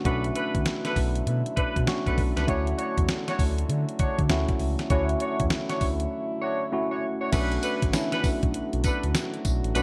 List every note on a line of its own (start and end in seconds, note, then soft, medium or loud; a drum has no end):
0.00 7.16 D3 medium
0.00 7.16 F#3 medium
0.00 0.05 A3 medium
0.00 7.16 A3 medium
0.00 2.44 B3 medium
0.00 0.05 C#4 medium
0.00 0.06 D4 medium
0.00 0.06 F#4 loud
0.05 0.31 B1 loud
0.05 1.06 A3 medium
0.05 1.06 C#4 medium
0.05 0.26 D4 medium
0.05 1.06 D4 medium
0.05 2.45 E4 medium
0.05 1.06 F#4 medium
0.05 0.26 A4 medium
0.05 0.26 B4 medium
0.05 kick loud
0.05 closed hi-hat medium
0.24 closed hi-hat soft
0.35 0.56 D4 medium
0.35 0.56 A4 medium
0.35 0.56 B4 medium
0.35 closed hi-hat medium
0.54 0.64 D2 medium
0.54 kick medium
0.54 closed hi-hat medium
0.66 snare loud
0.66 closed hi-hat medium
0.85 0.98 D4 medium
0.85 0.98 A4 medium
0.85 0.99 B4 medium
0.85 snare medium
0.85 closed hi-hat medium
0.96 1.22 B1 medium
0.96 kick medium
0.96 open hi-hat medium
1.15 closed hi-hat medium
1.26 1.43 B2 loud
1.26 closed hi-hat medium
1.46 closed hi-hat soft
1.56 1.65 B2 soft
1.56 1.77 D4 medium
1.56 1.77 A4 medium
1.56 1.77 B4 medium
1.56 kick loud
1.56 closed hi-hat medium
1.76 1.86 B2 medium
1.76 kick medium
1.76 closed hi-hat medium
1.87 2.39 A3 medium
1.87 2.39 C#4 medium
1.87 2.40 D4 medium
1.87 2.40 F#4 loud
1.87 snare loud
1.87 closed hi-hat medium
2.06 2.16 B1 medium
2.06 2.19 D4 medium
2.06 2.19 A4 medium
2.06 2.20 B4 medium
2.06 kick medium
2.06 closed hi-hat soft
2.18 2.34 B1 medium
2.18 kick medium
2.18 open hi-hat medium
2.37 2.46 C#2 medium
2.37 2.47 D4 medium
2.37 2.50 A4 medium
2.37 2.50 B4 medium
2.37 snare medium
2.37 closed hi-hat medium
2.47 2.74 D2 loud
2.47 3.48 A3 medium
2.47 7.16 C#4 medium
2.47 3.48 C#4 medium
2.47 2.68 D4 medium
2.47 3.49 E4 medium
2.47 4.88 F#4 medium
2.47 2.69 F#4 medium
2.47 3.49 F#4 loud
2.47 2.69 C#5 medium
2.47 kick loud
2.47 closed hi-hat medium
2.67 closed hi-hat soft
2.78 2.99 D4 medium
2.78 2.99 F#4 medium
2.78 2.99 C#5 medium
2.78 closed hi-hat medium
2.98 3.07 E2 medium
2.98 kick medium
2.98 closed hi-hat medium
3.09 snare loud
3.09 closed hi-hat medium
3.28 3.41 D4 medium
3.28 3.41 F#4 medium
3.28 3.41 C#5 loud
3.28 snare medium
3.28 closed hi-hat medium
3.39 3.64 D2 medium
3.39 kick loud
3.39 open hi-hat medium
3.58 closed hi-hat medium
3.69 3.85 D3 loud
3.69 closed hi-hat medium
3.89 closed hi-hat soft
3.99 4.07 D3 soft
3.99 4.20 D4 medium
3.99 4.20 F#4 medium
3.99 4.20 C#5 medium
3.99 kick loud
3.99 closed hi-hat medium
4.19 4.28 D3 medium
4.19 kick medium
4.19 closed hi-hat soft
4.30 4.46 D2 loud
4.30 4.82 A3 medium
4.30 4.82 C#4 medium
4.30 4.82 E4 medium
4.30 4.83 F#4 loud
4.30 snare loud
4.30 closed hi-hat medium
4.48 kick loud
4.48 closed hi-hat soft
4.60 4.76 C#2 medium
4.60 open hi-hat medium
4.79 snare medium
4.79 closed hi-hat soft
4.90 5.16 D2 loud
4.90 5.91 A3 medium
4.90 5.91 C#4 medium
4.90 5.10 D4 medium
4.90 7.16 E4 medium
4.90 5.91 E4 medium
4.90 5.11 F#4 medium
4.90 5.91 F#4 loud
4.90 5.11 C#5 loud
4.90 kick loud
4.90 closed hi-hat medium
5.09 closed hi-hat soft
5.20 5.41 D4 medium
5.20 5.41 F#4 medium
5.20 5.41 C#5 medium
5.20 closed hi-hat medium
5.40 5.49 E2 loud
5.40 kick medium
5.40 closed hi-hat medium
5.50 snare loud
5.50 closed hi-hat medium
5.69 5.83 D4 medium
5.69 5.83 F#4 medium
5.69 5.83 C#5 medium
5.69 snare medium
5.69 closed hi-hat medium
5.81 6.07 D2 loud
5.81 kick loud
5.81 open hi-hat medium
6.00 closed hi-hat medium
6.41 6.62 D4 medium
6.41 6.62 F#4 medium
6.41 6.62 C#5 medium
6.72 7.24 A3 medium
6.72 7.24 C#4 medium
6.72 7.25 E4 medium
6.72 7.25 F#4 loud
6.91 7.04 D4 medium
6.91 7.04 F#4 medium
6.91 7.04 C#5 medium
7.21 7.31 D4 medium
7.21 7.35 F#4 medium
7.21 7.35 C#5 medium
7.32 7.58 B1 loud
7.32 9.83 D3 medium
7.32 9.83 F#3 medium
7.32 7.85 A3 medium
7.32 9.83 A3 medium
7.32 9.73 B3 medium
7.32 7.85 C#4 medium
7.32 7.53 D4 medium
7.32 7.85 D4 medium
7.32 9.83 F#4 medium
7.32 7.85 F#4 medium
7.32 7.53 A4 medium
7.32 7.53 B4 medium
7.32 kick loud
7.32 closed hi-hat medium
7.32 crash loud
7.32 tambourine medium
7.52 closed hi-hat soft
7.62 7.83 D4 medium
7.62 7.83 A4 medium
7.62 7.83 B4 medium
7.62 closed hi-hat medium
7.62 tambourine medium
7.82 7.92 A1 loud
7.82 kick medium
7.82 closed hi-hat medium
7.93 8.94 A3 medium
7.93 8.94 C#4 medium
7.93 8.94 D4 medium
7.93 8.94 E4 loud
7.93 snare loud
7.93 closed hi-hat medium
7.93 tambourine medium
8.12 8.25 D4 medium
8.12 8.26 A4 medium
8.12 8.26 B4 medium
8.12 snare medium
8.12 closed hi-hat medium
8.24 8.31 B1 medium
8.24 kick loud
8.24 open hi-hat medium
8.24 tambourine medium
8.43 8.52 B1 medium
8.43 kick loud
8.43 closed hi-hat medium
8.54 8.62 B1 medium
8.54 closed hi-hat medium
8.73 8.83 B1 loud
8.73 closed hi-hat medium
8.84 9.05 D4 medium
8.84 9.05 A4 medium
8.84 9.05 B4 medium
8.84 kick loud
8.84 closed hi-hat medium
8.84 tambourine medium
9.03 9.13 D2 medium
9.03 closed hi-hat medium
9.15 snare loud
9.15 closed hi-hat medium
9.15 tambourine medium
9.34 closed hi-hat soft
9.45 9.61 B1 medium
9.45 kick medium
9.45 closed hi-hat medium
9.45 tambourine medium
9.64 9.73 A1 medium
9.64 closed hi-hat soft
9.75 9.83 B1 loud
9.75 9.83 A3 medium
9.75 9.83 C#4 medium
9.75 9.83 D4 medium
9.75 9.83 F#4 loud
9.75 9.83 A4 medium
9.75 9.83 B4 loud
9.75 9.83 C#5 medium
9.75 closed hi-hat medium
9.75 tambourine medium